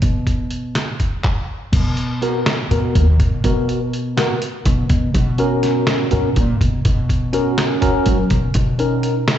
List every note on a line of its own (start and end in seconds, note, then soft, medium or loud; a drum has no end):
0.02 0.87 B2 medium
0.02 kick medium
0.02 closed hi-hat medium
0.27 kick medium
0.27 closed hi-hat soft
0.51 closed hi-hat medium
0.75 snare medium
0.75 closed hi-hat medium
1.00 kick medium
1.00 closed hi-hat soft
1.24 kick medium
1.24 clap medium
1.72 2.58 B2 medium
1.72 kick medium
1.72 closed hi-hat medium
1.72 crash medium
1.97 closed hi-hat soft
2.22 2.39 B3 medium
2.22 2.40 F#4 medium
2.22 2.40 A#4 medium
2.22 closed hi-hat medium
2.46 snare loud
2.46 closed hi-hat medium
2.71 2.92 B2 medium
2.71 3.05 B3 medium
2.71 3.05 F#4 medium
2.71 3.05 A#4 medium
2.71 closed hi-hat medium
2.95 3.17 D#2 medium
2.95 kick medium
2.95 closed hi-hat medium
3.19 3.41 B2 medium
3.19 kick medium
3.19 closed hi-hat medium
3.44 4.29 B2 medium
3.44 3.78 B3 medium
3.44 3.79 F#4 medium
3.44 3.79 A#4 medium
3.44 kick medium
3.44 closed hi-hat medium
3.69 closed hi-hat medium
3.93 closed hi-hat medium
4.17 4.34 B3 medium
4.17 4.34 F#4 medium
4.17 4.35 A#4 medium
4.17 snare medium
4.17 closed hi-hat medium
4.42 closed hi-hat medium
4.65 4.87 B2 medium
4.65 kick medium
4.65 closed hi-hat medium
4.89 5.11 B2 medium
4.89 kick medium
4.89 closed hi-hat medium
5.14 5.99 B2 medium
5.14 kick medium
5.14 closed hi-hat medium
5.38 6.07 C#4 medium
5.38 6.07 F#4 medium
5.38 6.08 A#4 medium
5.38 closed hi-hat soft
5.63 snare soft
5.63 closed hi-hat medium
5.87 snare loud
5.87 closed hi-hat medium
6.11 6.34 B2 medium
6.11 6.29 C#4 medium
6.11 6.29 F#4 medium
6.11 6.29 A#4 medium
6.11 closed hi-hat medium
6.36 6.58 A#2 medium
6.36 kick loud
6.36 closed hi-hat medium
6.61 6.82 B2 medium
6.61 kick medium
6.61 closed hi-hat medium
6.85 7.70 B2 medium
6.85 kick loud
6.85 closed hi-hat medium
7.09 kick medium
7.09 closed hi-hat medium
7.33 7.80 C#4 medium
7.33 7.81 F#4 medium
7.33 7.81 A#4 medium
7.33 closed hi-hat medium
7.58 snare loud
7.58 closed hi-hat medium
7.81 8.16 C#4 medium
7.81 8.17 F#4 medium
7.81 8.17 A#4 medium
7.81 kick medium
7.81 closed hi-hat medium
8.06 8.28 F#3 medium
8.06 kick loud
8.06 closed hi-hat medium
8.30 8.52 B2 medium
8.30 kick medium
8.30 closed hi-hat medium
8.54 9.38 B2 medium
8.54 kick loud
8.54 closed hi-hat medium
8.79 9.14 C#4 medium
8.79 9.14 D#4 medium
8.79 9.14 A#4 medium
8.79 closed hi-hat medium
9.03 closed hi-hat medium
9.28 snare medium
9.28 closed hi-hat medium